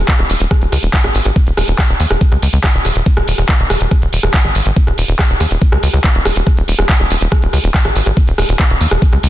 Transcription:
0.08 kick, clap, closed hi-hat
0.19 D#1, cross-stick, closed hi-hat
0.30 D#1, open hi-hat
0.40 D#1, closed hi-hat
0.51 kick, cross-stick, closed hi-hat
0.62 D#1, closed hi-hat
0.72 C#2, cross-stick, open hi-hat
0.83 D#1, closed hi-hat
0.94 kick, clap, closed hi-hat
1.04 G#1, cross-stick, closed hi-hat
1.15 G#1, open hi-hat
1.25 G#1, cross-stick, closed hi-hat
1.36 kick, closed hi-hat
1.47 D#1, closed hi-hat
1.57 D#1, cross-stick, open hi-hat
1.68 D#1, closed hi-hat
1.79 kick, cross-stick, clap, closed hi-hat
1.89 D#1, closed hi-hat
2.00 D#2, open hi-hat
2.11 D#1, cross-stick, closed hi-hat
2.21 kick, closed hi-hat
2.32 C#2, cross-stick, closed hi-hat
2.42 C#2, open hi-hat
2.53 C#2, closed hi-hat
2.64 kick, cross-stick, clap, closed hi-hat
2.74 D#1, closed hi-hat
2.85 D#1, cross-stick, open hi-hat
2.96 D#1, closed hi-hat
3.06 kick, closed hi-hat
3.17 D#1, cross-stick, closed hi-hat
3.27 D#1, open hi-hat
3.38 D#1, cross-stick, closed hi-hat
3.49 kick, clap, closed hi-hat
3.59 D#1, closed hi-hat
3.70 D#1, cross-stick, open hi-hat
3.81 D#1, closed hi-hat
3.91 kick, cross-stick, closed hi-hat
4.02 D#1, closed hi-hat
4.13 D#1, open hi-hat
4.23 D#1, cross-stick, closed hi-hat
4.34 kick, clap, closed hi-hat
4.45 G#1, cross-stick, closed hi-hat
4.55 G#1, open hi-hat
4.66 G#1, closed hi-hat
4.76 kick, closed hi-hat
4.87 D#1, cross-stick, closed hi-hat
4.98 D#1, open hi-hat
5.08 D#1, closed hi-hat
5.19 kick, cross-stick, clap, closed hi-hat
5.30 D#1, closed hi-hat
5.40 D#2, cross-stick, open hi-hat
5.51 D#1, closed hi-hat
5.62 kick, closed hi-hat
5.72 C#2, cross-stick, closed hi-hat
5.83 C#2, open hi-hat
5.93 C#2, cross-stick, closed hi-hat
6.04 kick, clap, closed hi-hat
6.15 D#1, closed hi-hat
6.25 D#1, cross-stick, open hi-hat
6.36 D#1, closed hi-hat
6.47 kick, cross-stick, closed hi-hat
6.57 D#1, closed hi-hat
6.68 D#1, open hi-hat
6.79 D#1, cross-stick, closed hi-hat
6.89 kick, clap, closed hi-hat
7.00 D#1, cross-stick, closed hi-hat
7.10 D#1, open hi-hat
7.21 D#1, closed hi-hat
7.32 kick, cross-stick, closed hi-hat
7.42 D#1, closed hi-hat
7.53 C#2, cross-stick, open hi-hat
7.64 D#1, closed hi-hat
7.74 kick, clap, closed hi-hat
7.85 G#1, cross-stick, closed hi-hat
7.96 G#1, open hi-hat
8.06 G#1, cross-stick, closed hi-hat
8.17 kick, closed hi-hat
8.28 D#1, closed hi-hat
8.38 D#1, cross-stick, open hi-hat
8.49 D#1, closed hi-hat
8.59 kick, cross-stick, clap, closed hi-hat
8.70 D#1, closed hi-hat
8.81 D#2, open hi-hat
8.91 D#1, cross-stick, closed hi-hat
9.02 kick, closed hi-hat
9.13 C#2, cross-stick, closed hi-hat
9.23 C#2, open hi-hat

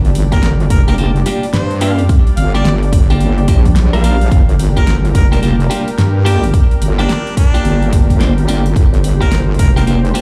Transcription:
Already playing: G1 G3 D4 G4 D5
0.05 open hi-hat
0.15 open hi-hat
0.32 A#3 D4 F4 G4 A#4, kick, open hi-hat
0.43 snare, open hi-hat
0.60 open hi-hat
0.70 F1 A#4, kick, open hi-hat
0.88 A#3 D4 F4 G4 A#4, open hi-hat
0.98 A#3 D4 F4 G4, open hi-hat
1.16 open hi-hat
1.26 A#3 D4 F4 G4, open hi-hat
1.43 open hi-hat
1.53 G2 C5, snare, open hi-hat
1.71 open hi-hat
1.81 A#3 D4 F4 G4 F5, open hi-hat
1.99 open hi-hat
2.09 kick, open hi-hat
2.27 open hi-hat
2.37 G1 F5, open hi-hat
2.54 A#3 D4 F4 G4 D5, open hi-hat
2.65 G1, snare, open hi-hat
2.70 snare
2.74 snare
2.78 snare
2.83 open hi-hat
2.93 kick, open hi-hat
3.10 A#3 D4 F4 G4, open hi-hat
3.20 open hi-hat
3.38 open hi-hat
3.48 A#1 A#3 D4 F4 G4, kick, open hi-hat
3.65 kick, open hi-hat
3.76 snare, open hi-hat
3.93 A#1 A#3 D4 F4 A#4 F5, open hi-hat
4.04 A#3 D4 F4 A#4, open hi-hat
4.21 open hi-hat
4.31 G1 A#4, kick, open hi-hat
4.49 open hi-hat
4.59 open hi-hat
4.77 A#3 D4 F4 G4 A#4, kick, open hi-hat
4.87 snare, open hi-hat
5.05 open hi-hat
5.15 F1 A#4, kick, open hi-hat
5.32 A#3 D4 F4 G4 A#4, open hi-hat
5.42 A#3 D4 F4 G4, open hi-hat
5.60 open hi-hat
5.70 A#3 D4 F4 G4, open hi-hat
5.88 open hi-hat
5.98 G2, snare, open hi-hat
6.25 A#3 D4 F4 G4, open hi-hat
6.44 open hi-hat
6.54 kick, open hi-hat
6.71 open hi-hat
6.81 G1, open hi-hat
6.99 A#3 D4 F4 G4, open hi-hat
7.09 snare, open hi-hat
7.27 open hi-hat
7.37 D4, kick, open hi-hat
7.54 A#3 D4 F4 G4, open hi-hat
7.65 G1, open hi-hat
7.82 open hi-hat
7.93 kick, open hi-hat
8.10 G1, kick, open hi-hat
8.20 A#3 D4 F4 C5, snare, open hi-hat
8.38 open hi-hat
8.48 G1 A#3 D4 F4 G4, open hi-hat
8.66 open hi-hat
8.76 G1 C5, kick, open hi-hat
8.94 open hi-hat
9.04 open hi-hat
9.21 A#3 D4 F4 G4 A#4, kick, open hi-hat
9.32 snare, open hi-hat
9.54 open hi-hat
9.59 F1 A#4, kick, open hi-hat
9.76 A#3 D4 F4 G4 A#4, open hi-hat
9.87 A#3 D4 F4 G4, open hi-hat
10.05 open hi-hat
10.14 A#3 D4 F4 G4, open hi-hat

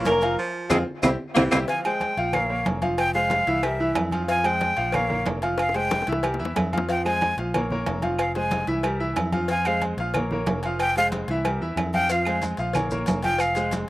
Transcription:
Already playing: E3
0.05 F1 A#3 A#4 C#5, cowbell, high conga, low timbale, low agogo, maracas
0.21 F3 F4 F5, cowbell, low agogo, maracas
0.38 F3
0.70 F2 F3 G#3 C4 F4 G#4, cowbell, low conga, high timbale, claves, maracas
1.03 C2 E3 A#3 C4 E4 G4, cowbell, low conga, high timbale, claves, maracas
1.35 C2 E3 A#3 C4 E4 G4, cowbell, low conga, high timbale, claves, maracas
1.51 C2 E3 A#3 C4 E4 G4, cowbell, low conga, high timbale, claves, maracas
1.68 F3 F4 F5 G#5, cowbell, high conga, low agogo
1.84 G#3 G#4 C5 G5, high conga, low agogo, claves
2.00 cowbell, high conga, low timbale, low agogo
2.17 A#1 F3 F4 F5, cowbell, high conga
2.33 A#3 A#4 C#5 F5, cowbell, high conga, low conga, low agogo, claves
2.50 A#3 A#4 C#5, high conga
2.65 F1, cowbell, high conga, low timbale, low agogo
2.82 F3 F4 F5, cowbell, high conga, low agogo
2.98 G5, cowbell, high conga, low agogo, claves
3.14 G#3 G#4 C5 F5, cowbell
3.30 cowbell, high conga, low timbale, low agogo
3.47 C2 E3 E4 E5, cowbell, high conga
3.63 G3 G4 A#4 E5, cowbell, high conga, low agogo, claves
3.79 E3 E4 E5, high conga
3.95 F2, cowbell, high conga, low timbale, low agogo, claves
4.11 F3 F4 F5, high conga, low agogo
4.28 F3 F4 F5 G#5, cowbell, high conga, low agogo
4.44 G#3 G#4 C5 G5, high conga, low agogo, claves
4.61 cowbell, high conga, low timbale, low agogo
4.77 A#1 F3 F4 F5, cowbell, high conga
4.92 A#3 A#4 C#5 F5, cowbell, high conga, low conga, low agogo, claves
5.09 A#3 A#4 C#5, high conga, low conga
5.25 F1, cowbell, high conga, low timbale, low agogo
5.42 F3 F4 F5, cowbell, low agogo
5.58 F5, cowbell, high bongo, high conga, low agogo, claves
5.69 high bongo
5.74 G#3 G#4 C5 G5, cowbell, high conga
5.91 cowbell, high bongo, high conga, low timbale, low agogo
6.02 high bongo
6.07 C2 E3 E4 E5, cowbell, high conga
6.12 high bongo
6.23 G3 G4 A#4, cowbell, low agogo, claves
6.34 low bongo
6.39 E2 E3 E4 E5, high conga
6.45 low bongo
6.56 F2, cowbell, low bongo, high conga, low timbale, low agogo, claves
6.72 F3 F4 F5, high conga, low agogo
6.78 low bongo
6.89 F3 F4 F5 G5, cowbell, high conga, low agogo
7.05 G#3 G#4 C5 G#5, low agogo, claves
7.21 cowbell, high conga, low timbale, low agogo
7.37 A#1 F3 F4 F5, cowbell, high conga
7.54 A#3 A#4 C#5, cowbell, high conga, low conga, low agogo, claves
7.70 A#3 A#4 C#5, high conga, low conga
7.86 F1, cowbell, high conga, low timbale, low agogo
8.02 F3 F4 F5, cowbell, high conga, low agogo
8.19 F5, cowbell, high conga, low agogo, claves
8.35 G#3 G#4 C5 G#5, cowbell, high conga
8.51 cowbell, high conga, low timbale, low agogo
8.67 C2 E3 E4 E5, cowbell, high conga
8.83 G3 G4 A#4, cowbell, high conga, low agogo, claves
9.00 E3 E4 E5, high conga
9.16 F2, cowbell, high conga, low timbale, low agogo, claves
9.32 F3 F4 F5, high conga, low agogo
9.48 F3 F4 F5 G#5, cowbell, high conga, low agogo
9.65 G#3 G#4 C5 F5, high conga, low agogo, claves
9.82 cowbell, high conga, low timbale, low agogo
9.97 A#1 F3 F4 F5, cowbell, high conga
10.14 A#3 A#4 C#5, cowbell, high conga, low conga, low agogo, claves
10.31 A#3 A#4 C#5, high conga, low conga
10.46 F1, cowbell, high conga, low timbale, low agogo
10.63 F3 F4 F5, cowbell, low agogo
10.79 G5, cowbell, high conga, low agogo, claves
10.96 G#3 G#4 C5 F5, cowbell, high conga
11.12 cowbell, high conga, low timbale, low agogo
11.28 C2 E3 E4 E5, cowbell, high conga
11.45 G3 G4 A#4, cowbell, low agogo, claves
11.61 E3 E4 E5, high conga
11.76 F2, cowbell, high conga, low timbale, low agogo, claves
11.94 F3 F4 F5 G5, high conga, low agogo
12.09 F3 F4 F5, cowbell, high conga, low agogo, maracas
12.25 G#3 G#4 C5, high conga, low agogo, claves
12.42 cowbell, high conga, low timbale, low agogo, maracas
12.57 A#1 F3 F4 F5, cowbell, maracas
12.73 A#3 A#4 C#5, cowbell, high conga, low conga, low agogo, claves, maracas
12.91 A#3 A#4 C#5, high conga, low conga, maracas
13.06 F1, cowbell, high conga, low timbale, low agogo, maracas
13.22 F3 F4 F5 G5, cowbell, high conga, low agogo, maracas
13.38 F5, cowbell, high conga, low agogo, claves, maracas
13.55 G#3 G#4 C5, cowbell, high conga, maracas
13.71 cowbell, high conga, low timbale, low agogo, maracas

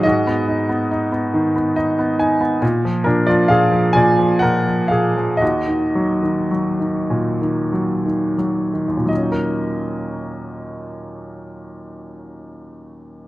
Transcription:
0.03 G#2 F#4 D#5
0.27 B3
0.48 D#4
0.69 B3
0.91 D#4
1.12 B3
1.34 D#3
1.56 B3
1.76 D#4 D#5
1.99 B3
2.19 D#4 G#5
2.41 B3
2.62 A#2
2.85 F3
3.04 A#2 D4 A#4
3.27 F3 F4 D5
3.48 A#2 G#4 F5
3.71 F3
3.93 A#2 D5 G#5
4.19 F3
4.39 A#2 A#4 F#5
4.66 F3
4.88 A#2 G#4 F5
5.16 F3
5.37 D#5
5.41 D#2 F#4
5.68 D#3
5.95 F#3
6.23 D#3
6.51 F#3
6.80 D#3
7.10 A#2
7.42 D#3
7.73 F#3
8.06 D#3
8.38 F#3
8.73 D#3
8.88 D#2
8.97 A#2
9.06 F#3 D#5
9.14 C#4
9.23 D#4
9.32 A#4

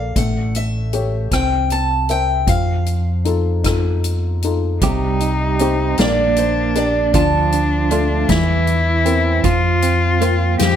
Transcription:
Already playing: A#1 A#3 A4 A#4 D5 F5
0.16 A1 A3 F#5, kick, closed hi-hat
0.55 E5, closed hi-hat
0.93 G4 A4 C#5, closed hi-hat
1.31 C2 C4 G5, kick, cross-stick, closed hi-hat
1.70 A5, closed hi-hat
2.09 A#4 C5 E5 G5, closed hi-hat
2.47 F2 F3 F5, kick, closed hi-hat
2.86 closed hi-hat
3.25 D#4 F4 A4, closed hi-hat
3.64 D#4 F4 A4, kick, cross-stick, closed hi-hat
4.04 closed hi-hat
4.42 D#4 F4 A4, closed hi-hat
4.81 C2 C3 G3 D#4 G4, kick, closed hi-hat
5.20 D#4, closed hi-hat
5.59 C4 D#4 G4 C5, closed hi-hat
5.98 A#1 A#3 D4 D5, snare, closed hi-hat
6.36 C5, closed hi-hat
6.75 D4 G4 A#4 D5, closed hi-hat
7.14 D2 D3 F3 D4 F4 A5, kick, closed hi-hat
7.52 D4, closed hi-hat
7.91 A3 D4 F4 A4, closed hi-hat
8.28 E2 E3 E4, kick, snare, closed hi-hat
8.67 closed hi-hat
9.05 C4 E4 A#4, closed hi-hat
9.43 F2 F3 F4, kick, closed hi-hat
9.82 C4, closed hi-hat
10.20 A#3 C4 F4 A#4, closed hi-hat
10.59 F2 F3 G4 G5, snare, closed hi-hat

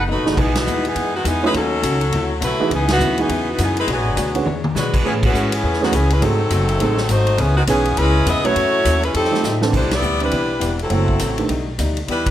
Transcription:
Already playing: F#1
0.07 B2 F#3 A3 D#4 F#4 B4
0.17 A1
0.25 F#1 E2 F#3 G#3 B3 D#4, snare
0.36 B1 E3 G#3 B3 D#4 G#4, kick, crash
0.55 E3 B3 D#4 F#4, snare, ride
0.66 D#2 E3 G#3 B3 D#4, hi-hat pedal
0.85 E3 B3 D#4 G#4, ride
0.94 F#2 E3 G#3 B3 D#4, kick, ride
1.15 D#3 G#3 B3 F#4
1.24 E2 E3 G#3 B3 D#4 G#4, kick, hi-hat pedal, ride
1.43 F#3 G#3 A3 C#4 D#4 E4 F4 B4
1.53 D#2 D#3 F#3 A3 C#4 D#4 F#4 A4, kick, ride
1.82 C#2 D#3 A3 C#4 F#4, kick, hi-hat pedal, ride
2.01 ride
2.12 D2 D3 F#3 C4 E4, kick, ride
2.41 B1 D3 F#3 A3 C4 E4 F#4 B4, kick, hi-hat pedal, ride
2.59 E3 G#3 B3 D#4 F#4, muted upright bass stroke
2.70 C#2 C#3 F#3 B3 E4 G#4, kick, ride
2.74 E3 B3 D#4
2.88 E3 B3 D#4 F#4, snare, ride
2.99 D#2 C#3 F#3 B3 E4, hi-hat pedal
3.18 E3 G#3 B3 D#4 F#4 G#4, ride
3.28 E2 C#3 F#3 B3 E4, kick, ride
3.50 E3 B3 D#4 F#4
3.58 F#2 C#3 F#3 B3 E4, kick, hi-hat pedal, ride
3.62 E3 B3 D#4 G#4
3.77 G#3 D#4 E4 B4, ride
3.86 B1 B2 A3 D4 F#4, kick, ride
3.92 F#3 B3 D4 G#4
3.97 A1
4.06 F#1
4.15 D2 B2 A3 D4 F#4, kick, hi-hat pedal, ride
4.35 D3 G#3 B3 C#4 F#4, ride
4.45 E2 E3 D4 G#4 C#5, mid tom
4.64 mid tom
4.75 B2 E3 G#3 D4 F#4 G#4 B4 C#5, snare, hi-hat pedal
4.94 kick, crash
5.03 A2 E3 A3 B3 C#4 G#4 B4, kick
5.23 E3 B3 C#4 F#4, kick, crash
5.33 G#2 A3 C#4 G#4 B4, hi-hat pedal
5.52 E3 B3 C#4 G#4, ride
5.63 E2 A3 C#4 G#4 B4, kick
5.73 snare
5.80 D#3 E3 G#3 A3 B3 C#4 F#4 G#4, snare
5.92 C#2 E3 A3 B3 C#4 G#4 B4, kick, hi-hat pedal, ride
6.10 G#3 C#4 E4 B4, ride
6.21 G#1 G#2 F#3 A3 C4 D#4 G#4 A4, kick, ride
6.50 F#1 G#2 F#3 A3 C4, kick, hi-hat pedal, ride
6.69 ride
6.80 A1 G#2 F#3 A3 C4 D#4 G#4, kick, ride
6.97 snare
7.08 G#1 G#2 F#3 A3 C4 D#4 F#4 C5, kick, hi-hat pedal, ride
7.27 ride
7.37 C#2 C#3 E3 G#3 B3 C#4 E4 G#4, kick, ride
7.56 D#3 G#3 B3 F#4
7.67 B1 C#3 E3 G#3 B3 C#4 D#4 E4 G#4, kick, hi-hat pedal, ride
7.85 ride
7.96 C#2 C#3 G#3 B3 C#4 E4 B4, kick, ride
8.26 E2 C#3 G#3 B3 E4 G#4 D#5, kick, hi-hat pedal, ride
8.35 C#2
8.44 B1 F#3 A3 C#4 E4 F#4 B4 C#5, ride
8.56 F#2 E3 A3 C#4, kick, ride
8.85 D#2 F#2 E3 A3 C#4, kick, hi-hat pedal, ride
9.03 G#3 C#4 E4 B4, ride
9.14 F2 F3 G3 A3 C4 D#4 G4 A4, kick, ride
9.24 snare
9.31 F3 A3 C4 D#4 G4, snare
9.44 A2 F3 A3 D#4 G4, snare, hi-hat pedal
9.61 E3 B3 C4 D4 A4, snare
9.73 C2 C3 E3 G3 B3 D4 E4 C5, kick, crash
9.91 B3 E4 G4 D5, snare, ride
10.02 D2 C3 E3 B3 D4, hi-hat pedal
10.20 E3 G3 B3 C4 D4 E4 G4 B4, ride
10.31 B1 C3 E3 B3 D4, kick, ride
10.59 E1 C3 E3 B3 D4, kick, hi-hat pedal, ride
10.79 F#3 C4 E4 A4, ride
10.90 F#1 F#2 E3 F#3 A3 C4 E4 F#4, kick, ride
11.08 kick
11.19 A1 F#2 E3 A3 C4, kick, hi-hat pedal, ride
11.38 D#3 A3 B3 D4 G4, ride
11.48 B1 B2 G3 A3 D#4, kick, ride
11.78 D2 B2 G3 A3 D#4, kick, hi-hat pedal, ride
11.97 ride
12.07 E2 E3 G3 B3 D4 E4 G4 B4, kick, ride
12.26 kick, ride

